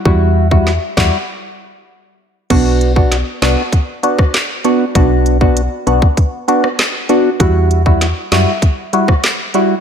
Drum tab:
CC |----------------|x---------------|----------------|----------------|
HH |----------------|x-x-x-x-x-x-x-x-|x-x-x-x-x-x-x-x-|x-x-x-x-x-x-x-x-|
CP |------x---------|------x-----x---|------------x---|------x-----x---|
SD |----o-o---------|----o-o----ro---|-----------ro---|----o-o----ro---|
BD |o--o--o---------|o--o----o--o----|o--o---oo-------|o--o----o--o----|